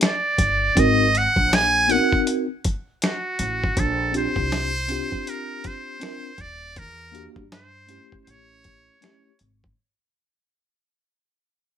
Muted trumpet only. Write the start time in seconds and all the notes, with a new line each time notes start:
0.06 D5
0.80 D#5
1.18 F#5
1.55 G#5
1.92 F#5
3.05 F#4
3.80 A4
4.17 C5
5.29 A#4
5.67 C5
6.41 D5
6.78 A#4
7.54 C5
8.24 C5
8.30 C#5